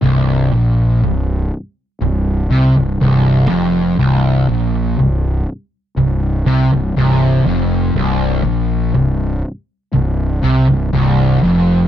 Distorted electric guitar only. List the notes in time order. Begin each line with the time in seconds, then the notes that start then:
0.02 C2
0.52 A#2
1.03 C2
2.02 C2
2.51 C3
2.76 C2
3.01 C2
3.49 F2
3.99 C2
4.49 A#2
4.99 C2
5.97 C2
6.46 C3
6.72 C2
6.97 C2
7.46 F2
7.96 C2
8.44 A#2
8.94 C2
9.93 C2
10.43 C3
10.68 C2
10.93 C2
11.43 F2